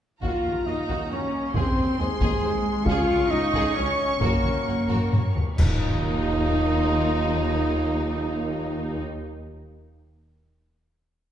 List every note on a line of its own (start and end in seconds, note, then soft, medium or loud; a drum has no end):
0.22 0.30 D#2 soft
0.22 1.52 F#3 soft
0.22 1.52 A#3 soft
0.22 0.64 F4 soft
0.22 0.65 F4 medium
0.22 0.44 F#4 soft
0.22 0.68 F5 medium
0.22 1.51 A#5 soft
0.22 taiko soft
0.45 0.53 D#2 soft
0.45 0.54 F#4 soft
0.45 0.54 A#4 soft
0.66 0.75 D#2 soft
0.66 1.12 D#4 soft
0.66 0.74 F#4 soft
0.66 0.74 D#5 soft
0.66 1.11 D#5 medium
0.89 0.97 D#2 soft
0.89 0.98 D#2 soft
0.89 1.10 F#4 soft
0.89 taiko soft
1.11 1.19 D#2 soft
1.11 1.20 D#2 soft
1.11 1.56 C#4 medium
1.11 1.55 C#4 soft
1.11 1.19 F#4 soft
1.11 1.20 A#4 soft
1.11 1.55 C#5 medium
1.54 1.63 D#2 medium
1.54 2.84 D#3 soft
1.54 2.86 C4 soft
1.54 1.99 C4 medium
1.54 2.00 C4 medium
1.54 1.76 G#4 medium
1.54 1.98 C5 medium
1.54 2.87 C6 medium
1.54 taiko medium
1.77 1.85 D#2 soft
1.77 1.86 G#4 soft
1.77 1.86 C5 soft
1.99 2.07 D#2 soft
1.99 2.87 G#3 medium
1.99 2.88 G#3 medium
1.99 2.88 G#4 medium
1.99 2.08 G#4 soft
1.99 2.08 D#5 soft
2.21 2.29 D#2 medium
2.21 2.42 G#4 medium
2.21 taiko medium
2.43 2.51 D#2 soft
2.43 2.53 G#4 soft
2.43 2.53 C5 medium
2.86 2.94 C#2 medium
2.86 2.95 C#2 medium
2.86 5.35 C#3 medium
2.86 5.31 C#4 medium
2.86 3.31 F4 medium
2.86 3.30 F4 medium
2.86 3.09 G#4 medium
2.86 3.32 F5 loud
2.86 5.37 C#6 medium
2.86 taiko medium
3.09 3.17 C#2 medium
3.09 3.18 G#4 soft
3.09 3.18 C#5 medium
3.30 3.39 C#2 medium
3.30 3.40 C#2 medium
3.30 3.75 D#4 medium
3.30 3.40 G#4 soft
3.30 3.77 D#5 medium
3.30 3.40 F5 medium
3.53 3.61 C#2 medium
3.53 3.63 C#2 medium
3.53 3.75 G#4 medium
3.53 taiko medium
3.75 3.84 C#2 medium
3.75 3.85 C#2 medium
3.75 4.21 C#4 medium
3.75 3.86 G#4 medium
3.75 4.20 C#5 medium
3.75 3.85 C#5 medium
4.20 4.28 F#1 medium
4.20 4.30 F#2 medium
4.20 5.32 A#3 medium
4.20 5.33 A#3 medium
4.20 4.42 F#4 medium
4.20 5.32 A#4 medium
4.20 4.43 A#4 medium
4.20 taiko medium
4.43 4.51 F#1 soft
4.43 4.52 F#2 soft
4.43 4.51 F#4 soft
4.43 4.52 C#5 soft
4.43 taiko mid soft
4.67 4.75 F#1 soft
4.67 4.76 F#2 soft
4.67 4.76 F#4 soft
4.67 4.76 F#5 soft
4.89 4.97 F#1 medium
4.89 4.98 F#2 medium
4.89 5.10 F#4 medium
4.89 5.10 A#4 medium
4.89 taiko low-mid medium
5.12 5.20 F#1 soft
5.12 5.21 F#2 soft
5.12 5.20 F#4 soft
5.12 5.20 C#5 soft
5.12 taiko low-mid medium
5.36 taiko low medium
5.57 9.01 D#2 medium
5.57 9.01 F#3 medium
5.57 9.02 A#3 medium
5.57 9.01 D#4 medium
5.57 9.02 D#4 medium
5.57 9.01 F4 medium
5.57 9.01 D#5 medium
5.57 concert bass drum medium
5.57 taiko low medium
5.57 crash medium